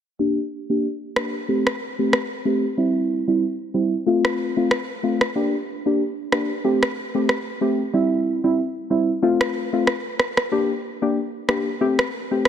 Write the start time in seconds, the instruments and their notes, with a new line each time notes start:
0.19 synth stab A#3 D4 G4
0.69 synth stab A#3 D4 G4
1.16 synth stab A#3 D4 G4, cross-stick
1.48 synth stab A3 C4 G4
1.67 cross-stick
1.99 synth stab A3 C4 G4
2.13 cross-stick
2.45 synth stab A3 C4 G4
2.77 synth stab G3 C4 E4
3.27 synth stab G3 C4 E4
3.74 synth stab G3 C4 E4
4.06 synth stab A3 C4 F4
4.25 cross-stick
4.57 synth stab A3 C4 F4
4.71 cross-stick
5.03 synth stab A3 C4 F4
5.21 cross-stick
5.35 synth stab A#3 D4 G4
5.86 synth stab A#3 D4 G4
6.32 synth stab A#3 D4 G4, cross-stick
6.64 synth stab A3 C4 G4
6.83 cross-stick
7.14 synth stab A3 C4 G4
7.29 cross-stick
7.61 synth stab A3 C4 G4
7.93 synth stab G3 C4 E4
8.44 synth stab G3 C4 E4
8.90 synth stab G3 C4 E4
9.22 synth stab A3 C4 F4
9.41 cross-stick
9.73 synth stab A3 C4 F4
9.87 cross-stick
10.20 cross-stick
10.37 cross-stick
10.52 synth stab A#3 D4 G4
11.02 synth stab A#3 D4 G4
11.48 synth stab A#3 D4 G4, cross-stick
11.81 synth stab A3 C4 G4
11.99 cross-stick
12.31 synth stab A3 C4 G4
12.45 cross-stick